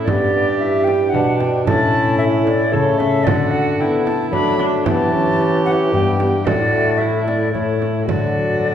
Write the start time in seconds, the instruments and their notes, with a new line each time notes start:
0.04 harp G2, bassoon G2, trombone B3, viola G4, flute D5, frame drum
0.33 trombone B3
0.59 harp D4 G4 B4, trombone E4, flute E5
0.84 flute G5, frame drum
1.09 harp B2 D4 G4 B4, trombone D4, flute F#5
1.14 bassoon B2, viola D4, frame drum
1.37 flute G5, frame drum
1.64 harp A2, bassoon A2, trombone C#4, viola E4, flute A5, frame drum
2.18 harp C#4 E4 A4, flute E5
2.47 flute D5, frame drum
2.72 harp C#3 C#4 E4 A4, bassoon C#3, trombone A3, viola A4, flute C#5, frame drum
2.98 flute E5, frame drum
3.24 harp D3, bassoon D3, viola F#4, flute D5, frame drum
3.51 flute F#5
3.79 trombone B3, harp D4 F#4 A4, viola E4, flute G5
4.05 flute A5, frame drum
4.31 harp F#3 D4 F#4 A4, bassoon F#3, trombone A3, viola D4, flute B5, frame drum
4.58 viola D4, frame drum
4.85 harp E3, bassoon E3, trombone B3, viola G4, flute A5, frame drum
5.13 trombone C#4
5.38 harp B3 E4 G4
5.65 flute F#5, frame drum
5.92 harp G2 B3 E4 G4, bassoon G2, trombone B3, flute G5, frame drum
6.20 trombone B3, frame drum
6.45 harp A2, bassoon A2, trombone A3, viola F#4, flute D5, frame drum
6.98 harp A3 E4 A4, viola E4, flute E5
7.26 flute D5, frame drum
7.53 harp A2 A3 E4 A4, bassoon A2, trombone A3, viola E4, flute C#5, frame drum
7.82 frame drum
8.07 harp D3, bassoon D3, trombone F#3, viola F#4, flute D5, frame drum
8.61 harp A3 F#4 A4